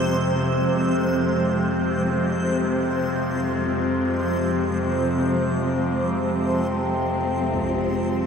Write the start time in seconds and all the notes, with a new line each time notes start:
Already playing: F2 C3 F3 G#3 C4 C5
7.54 F2 C3, impact
7.58 G#4